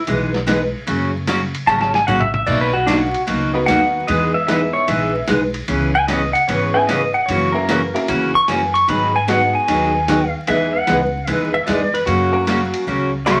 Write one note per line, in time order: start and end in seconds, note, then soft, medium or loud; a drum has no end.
0.07 0.72 B1 medium
0.07 0.30 E3 medium
0.07 0.30 G#3 medium
0.07 0.30 B3 medium
0.07 0.30 D#4 medium
0.07 0.31 G#4 medium
0.07 ride medium
0.34 snare medium
0.47 0.59 E3 medium
0.47 0.59 G#3 medium
0.47 0.59 B3 medium
0.47 0.59 D#4 medium
0.47 0.60 G#4 medium
0.47 snare medium
0.47 hi-hat pedal medium
0.47 ride medium
0.87 1.52 F#1 medium
0.87 1.10 C#3 medium
0.87 1.10 F#3 medium
0.87 1.10 A#3 medium
0.87 1.10 C#4 medium
0.87 1.11 F#4 medium
0.87 ride medium
1.27 1.39 C#3 medium
1.27 1.40 F#3 medium
1.27 1.40 A#3 medium
1.27 1.40 C#4 medium
1.27 1.40 F#4 medium
1.27 snare medium
1.27 hi-hat pedal medium
1.27 ride medium
1.55 ride medium
1.67 2.02 G#1 medium
1.67 1.91 C#3 medium
1.67 1.91 F#3 medium
1.67 1.91 A#3 medium
1.67 1.91 C#4 medium
1.67 1.91 F#4 medium
1.67 1.80 A5 loud
1.67 snare soft
1.81 1.94 A5 medium
1.81 snare medium
1.94 2.07 G#5 loud
1.94 snare medium
2.07 2.42 A#1 medium
2.07 2.20 C#3 medium
2.07 2.20 F#3 medium
2.07 2.20 A#3 medium
2.07 2.20 C#4 medium
2.07 2.20 F#4 medium
2.07 2.20 F#5 medium
2.07 hi-hat pedal medium
2.07 mid tom medium
2.20 2.33 E5 medium
2.20 mid tom medium
2.34 2.47 E5 medium
2.34 mid tom loud
2.46 3.12 B1 medium
2.46 2.70 B2 medium
2.46 2.70 F#3 medium
2.46 2.70 A#3 medium
2.46 2.70 D#4 medium
2.46 2.70 F#4 medium
2.46 2.60 D5 loud
2.46 kick medium
2.46 crash medium
2.61 2.74 B4 medium
2.73 2.87 F#4 medium
2.87 3.00 B2 medium
2.87 3.00 F#3 medium
2.87 3.00 A#3 medium
2.87 3.00 D4 loud
2.87 3.00 D#4 medium
2.87 3.00 F#4 medium
2.87 snare medium
2.87 hi-hat pedal medium
2.87 ride medium
2.98 3.21 F#4 loud
3.14 ride soft
3.27 3.62 C#2 medium
3.27 3.50 B2 medium
3.27 3.50 F#3 medium
3.27 3.50 A#3 medium
3.27 3.50 D#4 medium
3.27 3.50 F#4 medium
3.27 ride medium
3.53 4.05 B3 medium
3.53 4.05 D#4 medium
3.53 4.05 F#4 medium
3.53 4.05 A#4 medium
3.53 4.05 B4 medium
3.66 4.02 D#2 medium
3.66 3.80 B2 medium
3.66 3.80 F#3 medium
3.66 3.80 A#3 medium
3.66 3.80 D#4 medium
3.66 3.81 F#4 medium
3.66 4.06 F#5 loud
3.66 snare medium
3.66 hi-hat pedal medium
3.66 ride medium
4.07 4.72 E2 medium
4.07 4.31 E3 medium
4.07 4.31 G#3 medium
4.07 4.31 B3 medium
4.07 4.31 D#4 medium
4.07 4.31 G#4 medium
4.07 4.34 D#5 medium
4.07 ride medium
4.34 4.46 E5 loud
4.47 4.60 E3 medium
4.47 4.60 G#3 medium
4.47 5.09 B3 medium
4.47 4.60 B3 medium
4.47 5.09 D#4 medium
4.47 4.60 D#4 medium
4.47 5.09 E4 medium
4.47 5.09 G#4 medium
4.47 4.60 G#4 medium
4.47 5.10 B4 medium
4.47 4.73 E5 loud
4.47 snare medium
4.47 hi-hat pedal medium
4.47 ride medium
4.73 4.87 C#5 loud
4.87 5.22 A#1 medium
4.87 5.10 E3 medium
4.87 5.11 G#3 medium
4.87 5.11 B3 medium
4.87 5.11 D#4 medium
4.87 5.11 G#4 medium
4.87 5.14 E5 loud
4.87 ride medium
5.27 5.62 B1 medium
5.27 5.40 E3 medium
5.27 5.40 G#3 medium
5.27 5.40 B3 medium
5.27 5.40 D#4 medium
5.27 5.40 G#4 medium
5.27 snare medium
5.27 hi-hat pedal medium
5.27 ride medium
5.54 ride soft
5.68 6.32 C#2 medium
5.68 5.91 C#3 medium
5.68 5.91 E3 medium
5.68 5.91 B3 medium
5.68 5.91 C#4 medium
5.68 5.91 G#4 medium
5.68 ride medium
5.95 6.08 G#5 loud
6.08 6.20 C#3 medium
6.08 6.20 E3 medium
6.08 6.21 B3 medium
6.08 6.21 C#4 medium
6.08 6.21 G#4 medium
6.08 6.33 D#5 loud
6.08 snare medium
6.08 hi-hat pedal medium
6.08 ride medium
6.33 6.47 F#5 medium
6.33 ride medium
6.48 7.12 G#1 medium
6.48 6.71 C#3 medium
6.48 6.71 E3 medium
6.48 6.71 B3 medium
6.48 6.71 C#4 medium
6.48 6.71 G#4 medium
6.48 6.74 C#5 medium
6.48 ride medium
6.74 6.86 B3 medium
6.74 6.86 C#4 medium
6.74 6.86 E4 medium
6.74 6.86 G#4 medium
6.74 6.87 B4 medium
6.74 6.87 G#5 loud
6.87 7.00 C#3 medium
6.87 7.01 E3 medium
6.87 7.01 B3 medium
6.87 7.01 C#4 medium
6.87 7.01 G#4 medium
6.87 7.13 D#5 medium
6.87 snare medium
6.87 hi-hat pedal soft
6.87 ride medium
7.14 7.27 F#5 medium
7.26 7.92 F#2 medium
7.26 7.51 C#3 medium
7.26 7.51 E3 medium
7.26 7.51 C#4 medium
7.26 7.53 C#5 loud
7.26 ride medium
7.30 7.52 A#3 medium
7.30 7.52 F#4 medium
7.52 7.66 A#3 medium
7.52 7.66 C#4 medium
7.52 7.66 E4 medium
7.52 7.66 F#4 medium
7.52 7.92 A#4 loud
7.52 7.67 A#4 medium
7.69 7.81 C#3 medium
7.69 7.80 E3 medium
7.69 7.81 A#3 medium
7.69 7.81 C#4 medium
7.69 7.81 F#4 medium
7.69 snare medium
7.69 hi-hat pedal medium
7.69 ride medium
7.94 8.06 A#3 medium
7.94 8.06 C#4 medium
7.94 8.07 E4 medium
7.94 8.07 F#4 medium
7.94 8.07 A#4 medium
7.94 ride medium
8.08 8.42 E2 medium
8.08 8.31 C#3 medium
8.08 8.31 E3 medium
8.08 8.31 A#3 medium
8.08 8.31 C#4 medium
8.08 8.31 F#4 medium
8.08 ride medium
8.35 8.48 C#6 loud
8.48 8.82 F#2 medium
8.48 8.60 C#3 medium
8.48 8.61 E3 medium
8.48 8.61 A#3 medium
8.48 8.61 C#4 medium
8.48 8.61 F#4 medium
8.48 8.74 G#5 loud
8.48 snare medium
8.48 hi-hat pedal medium
8.48 ride medium
8.74 8.87 C#6 medium
8.74 ride soft
8.87 9.52 G#2 medium
8.87 9.10 D#3 medium
8.87 9.11 F#3 medium
8.87 9.11 B3 medium
8.87 9.11 D#4 medium
8.87 9.11 G#4 medium
8.87 9.15 B5 medium
8.87 ride medium
9.16 9.28 G#5 medium
9.28 9.40 D#3 medium
9.28 9.40 F#3 medium
9.28 9.89 G#3 medium
9.28 9.40 B3 medium
9.28 9.89 B3 medium
9.28 9.90 D#4 medium
9.28 9.40 D#4 medium
9.28 9.90 F#4 medium
9.28 9.40 G#4 medium
9.28 9.90 G#4 medium
9.28 9.55 F#5 medium
9.28 snare medium
9.28 hi-hat pedal medium
9.28 ride medium
9.55 10.32 G#5 loud
9.68 10.32 D#2 medium
9.68 9.91 D#3 medium
9.68 9.91 F#3 medium
9.68 9.91 B3 medium
9.68 9.91 D#4 medium
9.68 9.91 G#4 medium
9.68 ride medium
10.08 10.20 D#3 medium
10.08 10.20 F#3 medium
10.08 10.20 B3 medium
10.08 10.20 D#4 medium
10.08 10.21 G#4 medium
10.08 snare medium
10.08 hi-hat pedal medium
10.08 ride medium
10.47 10.80 E2 medium
10.47 10.71 E3 medium
10.47 10.72 G#3 medium
10.47 10.70 G#3 medium
10.47 10.72 B3 medium
10.47 10.71 B3 medium
10.47 10.72 D#4 medium
10.47 10.71 D#4 medium
10.47 10.72 E4 medium
10.47 10.72 G#4 medium
10.47 10.71 G#4 medium
10.47 10.74 E5 loud
10.47 ride medium
10.73 11.29 F#5 loud
10.87 11.22 C#2 medium
10.87 11.00 E3 medium
10.87 11.00 G#3 medium
10.87 11.00 B3 medium
10.87 11.00 D#4 medium
10.87 11.00 G#4 medium
10.87 snare medium
10.87 hi-hat pedal medium
10.87 ride medium
11.27 11.61 D#2 medium
11.27 11.50 E3 medium
11.27 11.50 G#3 medium
11.27 11.50 B3 medium
11.27 11.51 D#4 medium
11.27 11.51 G#4 medium
11.27 11.51 E5 loud
11.27 ride medium
11.54 11.66 E5 loud
11.66 12.01 E2 medium
11.66 11.79 E3 medium
11.66 11.79 G#3 medium
11.66 11.79 B3 medium
11.66 11.80 D#4 medium
11.66 11.80 G#4 medium
11.66 11.93 D5 loud
11.66 snare medium
11.66 hi-hat pedal medium
11.66 ride medium
11.94 12.07 B4 medium
11.94 ride medium
12.06 12.71 F#2 medium
12.06 12.30 C#3 medium
12.06 12.30 F#3 medium
12.06 12.30 A#3 medium
12.06 12.30 C#4 medium
12.06 12.84 F#4 loud
12.06 12.31 F#4 medium
12.06 ride medium
12.32 12.84 F#3 medium
12.32 12.84 A#3 medium
12.32 12.84 C#4 medium
12.32 12.84 F#4 medium
12.32 12.84 A#4 medium
12.47 12.59 C#3 medium
12.47 12.60 F#3 medium
12.47 12.60 A#3 medium
12.47 12.60 C#4 medium
12.47 12.60 F#4 medium
12.47 snare medium
12.47 hi-hat pedal medium
12.47 ride medium
12.74 ride medium
12.87 13.40 C#2 medium
12.87 13.10 C#3 medium
12.87 13.10 F#3 medium
12.87 13.10 A#3 medium
12.87 13.10 C#4 medium
12.87 13.10 F#4 medium
13.26 13.39 C#3 medium
13.26 13.40 F#3 medium
13.26 13.39 F#3 medium
13.26 13.40 A#3 medium
13.26 13.39 A#3 medium
13.26 13.40 C#4 medium
13.26 13.39 C#4 medium
13.26 13.40 F#4 medium
13.26 13.39 F#4 medium
13.26 13.40 A#4 medium
13.26 13.40 E5 medium
13.26 13.40 C#6 loud
13.26 snare medium
13.26 hi-hat pedal medium
13.26 ride medium